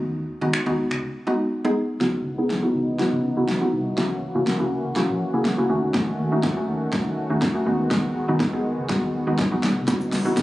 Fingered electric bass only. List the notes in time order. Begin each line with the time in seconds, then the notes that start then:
0.04 D#2
0.42 D#3
0.66 D#2
0.91 C#2
2.01 C#2
2.25 C#2
2.75 C#2
2.99 muted fingered electric bass stroke
3.12 C#3
3.37 C#2
3.73 C2
3.98 C#2
4.35 C#3
4.60 C#2
4.84 C#2
5.09 A#1
5.34 C#2
5.58 C#2
5.70 D#2
5.83 D2
5.94 D#2
6.19 D#2
6.68 D#2
7.06 D#3
7.30 D#2
7.66 D#2
7.91 D#2
8.29 D#3
8.53 D#2
8.78 C#2
9.03 D#2
9.27 D#2
9.52 F#2
9.63 B1
9.76 C2
9.88 C#2
10.12 C#2